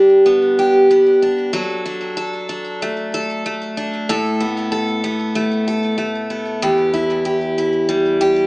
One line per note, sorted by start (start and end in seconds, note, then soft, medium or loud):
0.00 1.53 G2 medium
0.00 1.21 D3 medium
0.00 0.25 G3 soft
0.00 1.22 D4 medium
0.00 0.58 G4 medium
0.26 0.90 B3 medium
0.59 1.53 G4 medium
0.91 1.60 B3 medium
1.22 1.85 D4 medium
1.53 4.07 F#3 medium
1.53 2.16 A4 medium
1.86 2.48 D4 medium
2.17 3.14 A4 medium
2.49 3.76 D4 medium
2.82 3.45 A3 medium
3.14 4.09 A4 medium
3.46 4.43 A3 medium
3.77 4.15 D4 medium
4.09 6.63 A2 loud
4.09 4.71 A4 medium
4.40 5.03 B3 medium
4.72 5.66 A4 medium
5.04 6.30 B3 medium
5.35 5.97 A3 medium
5.68 6.62 A4 medium
5.98 6.68 A3 medium
6.30 6.93 B3 medium
6.62 8.47 E2 medium
6.62 7.25 G4 medium
6.94 7.57 E4 medium
7.25 8.20 G4 medium
7.58 8.47 E4 medium
7.89 8.47 G3 medium
8.21 8.47 G4 medium